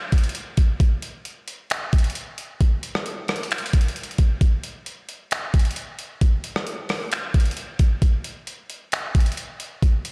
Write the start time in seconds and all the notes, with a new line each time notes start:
0.12 kick, closed hi-hat
0.18 closed hi-hat
0.24 closed hi-hat
0.29 closed hi-hat
0.35 closed hi-hat
0.57 kick, closed hi-hat
0.80 kick, closed hi-hat
1.02 closed hi-hat
1.25 closed hi-hat
1.48 closed hi-hat
1.70 finger snap, closed hi-hat
1.93 kick, closed hi-hat
1.98 closed hi-hat
2.04 closed hi-hat
2.10 closed hi-hat
2.15 closed hi-hat
2.38 closed hi-hat
2.61 kick, closed hi-hat
2.83 closed hi-hat
2.95 cross-stick
3.06 closed hi-hat
3.28 cross-stick, closed hi-hat
3.36 closed hi-hat
3.43 closed hi-hat
3.51 finger snap, closed hi-hat
3.58 closed hi-hat
3.66 closed hi-hat
3.73 kick, closed hi-hat
3.81 closed hi-hat
3.88 closed hi-hat
3.96 closed hi-hat
4.03 closed hi-hat
4.11 closed hi-hat
4.18 kick, closed hi-hat
4.41 kick, closed hi-hat
4.63 closed hi-hat
4.86 closed hi-hat
5.09 closed hi-hat
5.31 finger snap, closed hi-hat
5.54 kick, closed hi-hat
5.59 closed hi-hat
5.65 closed hi-hat
5.71 closed hi-hat
5.76 closed hi-hat
5.99 closed hi-hat
6.21 kick, closed hi-hat
6.44 closed hi-hat
6.56 cross-stick
6.67 closed hi-hat
6.89 cross-stick, open hi-hat
7.12 finger snap, closed hi-hat
7.34 kick, closed hi-hat
7.40 closed hi-hat
7.45 closed hi-hat
7.51 closed hi-hat
7.57 closed hi-hat
7.79 kick, closed hi-hat
8.02 kick, closed hi-hat
8.24 closed hi-hat
8.47 closed hi-hat
8.70 closed hi-hat
8.92 finger snap, closed hi-hat
9.15 kick, closed hi-hat
9.20 closed hi-hat
9.26 closed hi-hat
9.32 closed hi-hat
9.37 closed hi-hat
9.60 closed hi-hat
9.82 kick, closed hi-hat
10.05 closed hi-hat